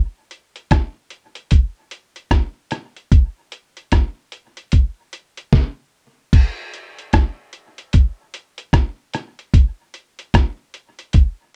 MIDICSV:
0, 0, Header, 1, 2, 480
1, 0, Start_track
1, 0, Tempo, 802139
1, 1865, Time_signature, 4, 2, 24, 8
1, 6913, End_track
2, 0, Start_track
2, 0, Title_t, "Drums"
2, 185, Note_on_c, 9, 42, 60
2, 245, Note_off_c, 9, 42, 0
2, 333, Note_on_c, 9, 42, 45
2, 393, Note_off_c, 9, 42, 0
2, 424, Note_on_c, 9, 42, 87
2, 425, Note_on_c, 9, 36, 99
2, 429, Note_on_c, 9, 37, 111
2, 484, Note_off_c, 9, 42, 0
2, 485, Note_off_c, 9, 36, 0
2, 489, Note_off_c, 9, 37, 0
2, 661, Note_on_c, 9, 42, 62
2, 721, Note_off_c, 9, 42, 0
2, 809, Note_on_c, 9, 42, 59
2, 869, Note_off_c, 9, 42, 0
2, 902, Note_on_c, 9, 42, 95
2, 908, Note_on_c, 9, 36, 80
2, 961, Note_off_c, 9, 42, 0
2, 968, Note_off_c, 9, 36, 0
2, 1144, Note_on_c, 9, 42, 75
2, 1204, Note_off_c, 9, 42, 0
2, 1292, Note_on_c, 9, 42, 48
2, 1352, Note_off_c, 9, 42, 0
2, 1382, Note_on_c, 9, 36, 93
2, 1383, Note_on_c, 9, 37, 100
2, 1383, Note_on_c, 9, 42, 73
2, 1441, Note_off_c, 9, 36, 0
2, 1443, Note_off_c, 9, 37, 0
2, 1443, Note_off_c, 9, 42, 0
2, 1620, Note_on_c, 9, 42, 72
2, 1626, Note_on_c, 9, 37, 58
2, 1680, Note_off_c, 9, 42, 0
2, 1686, Note_off_c, 9, 37, 0
2, 1774, Note_on_c, 9, 42, 38
2, 1834, Note_off_c, 9, 42, 0
2, 1865, Note_on_c, 9, 36, 116
2, 1866, Note_on_c, 9, 42, 77
2, 1925, Note_off_c, 9, 36, 0
2, 1926, Note_off_c, 9, 42, 0
2, 2106, Note_on_c, 9, 42, 64
2, 2166, Note_off_c, 9, 42, 0
2, 2255, Note_on_c, 9, 42, 49
2, 2315, Note_off_c, 9, 42, 0
2, 2344, Note_on_c, 9, 42, 91
2, 2347, Note_on_c, 9, 36, 102
2, 2349, Note_on_c, 9, 37, 100
2, 2404, Note_off_c, 9, 42, 0
2, 2407, Note_off_c, 9, 36, 0
2, 2409, Note_off_c, 9, 37, 0
2, 2585, Note_on_c, 9, 42, 65
2, 2645, Note_off_c, 9, 42, 0
2, 2735, Note_on_c, 9, 42, 60
2, 2794, Note_off_c, 9, 42, 0
2, 2823, Note_on_c, 9, 42, 93
2, 2830, Note_on_c, 9, 36, 85
2, 2883, Note_off_c, 9, 42, 0
2, 2890, Note_off_c, 9, 36, 0
2, 3069, Note_on_c, 9, 42, 77
2, 3129, Note_off_c, 9, 42, 0
2, 3216, Note_on_c, 9, 42, 58
2, 3276, Note_off_c, 9, 42, 0
2, 3307, Note_on_c, 9, 36, 91
2, 3307, Note_on_c, 9, 38, 69
2, 3366, Note_off_c, 9, 36, 0
2, 3367, Note_off_c, 9, 38, 0
2, 3787, Note_on_c, 9, 36, 127
2, 3788, Note_on_c, 9, 42, 89
2, 3788, Note_on_c, 9, 49, 113
2, 3847, Note_off_c, 9, 36, 0
2, 3848, Note_off_c, 9, 42, 0
2, 3848, Note_off_c, 9, 49, 0
2, 4031, Note_on_c, 9, 42, 65
2, 4091, Note_off_c, 9, 42, 0
2, 4180, Note_on_c, 9, 42, 48
2, 4240, Note_off_c, 9, 42, 0
2, 4266, Note_on_c, 9, 42, 90
2, 4269, Note_on_c, 9, 36, 109
2, 4272, Note_on_c, 9, 37, 109
2, 4326, Note_off_c, 9, 42, 0
2, 4329, Note_off_c, 9, 36, 0
2, 4332, Note_off_c, 9, 37, 0
2, 4505, Note_on_c, 9, 42, 67
2, 4565, Note_off_c, 9, 42, 0
2, 4656, Note_on_c, 9, 42, 59
2, 4716, Note_off_c, 9, 42, 0
2, 4745, Note_on_c, 9, 42, 92
2, 4752, Note_on_c, 9, 36, 97
2, 4805, Note_off_c, 9, 42, 0
2, 4811, Note_off_c, 9, 36, 0
2, 4990, Note_on_c, 9, 42, 80
2, 5049, Note_off_c, 9, 42, 0
2, 5133, Note_on_c, 9, 42, 55
2, 5193, Note_off_c, 9, 42, 0
2, 5224, Note_on_c, 9, 36, 93
2, 5228, Note_on_c, 9, 37, 98
2, 5228, Note_on_c, 9, 42, 78
2, 5284, Note_off_c, 9, 36, 0
2, 5288, Note_off_c, 9, 37, 0
2, 5288, Note_off_c, 9, 42, 0
2, 5467, Note_on_c, 9, 42, 84
2, 5473, Note_on_c, 9, 37, 60
2, 5526, Note_off_c, 9, 42, 0
2, 5533, Note_off_c, 9, 37, 0
2, 5619, Note_on_c, 9, 42, 42
2, 5679, Note_off_c, 9, 42, 0
2, 5707, Note_on_c, 9, 36, 127
2, 5708, Note_on_c, 9, 42, 88
2, 5766, Note_off_c, 9, 36, 0
2, 5768, Note_off_c, 9, 42, 0
2, 5948, Note_on_c, 9, 42, 69
2, 6008, Note_off_c, 9, 42, 0
2, 6096, Note_on_c, 9, 42, 56
2, 6156, Note_off_c, 9, 42, 0
2, 6187, Note_on_c, 9, 36, 104
2, 6187, Note_on_c, 9, 42, 88
2, 6193, Note_on_c, 9, 37, 111
2, 6247, Note_off_c, 9, 36, 0
2, 6247, Note_off_c, 9, 42, 0
2, 6253, Note_off_c, 9, 37, 0
2, 6426, Note_on_c, 9, 42, 67
2, 6486, Note_off_c, 9, 42, 0
2, 6575, Note_on_c, 9, 42, 60
2, 6635, Note_off_c, 9, 42, 0
2, 6661, Note_on_c, 9, 42, 99
2, 6668, Note_on_c, 9, 36, 84
2, 6721, Note_off_c, 9, 42, 0
2, 6728, Note_off_c, 9, 36, 0
2, 6913, End_track
0, 0, End_of_file